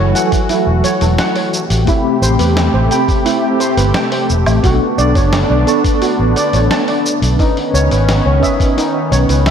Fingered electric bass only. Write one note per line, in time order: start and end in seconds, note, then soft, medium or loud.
0.00 0.12 F#1 medium
0.67 0.81 E1 medium
1.02 1.15 E1 loud
1.70 1.84 A1 medium
2.22 2.36 A1 medium
2.39 2.67 E2 medium
2.74 2.88 A1 loud
3.77 3.91 G1 loud
4.30 4.43 E1 medium
4.46 4.60 A1 medium
4.64 4.78 B1 loud
4.98 5.12 B1 medium
5.16 5.43 F#1 medium
5.50 5.64 B1 medium
6.19 6.33 A1 medium
6.53 6.67 A1 loud
7.22 7.36 B1 medium
7.74 7.88 C#2 medium
7.91 8.19 G#1 loud
8.25 8.39 C#2 medium
9.12 9.26 B1 loud
9.29 9.51 C#2 medium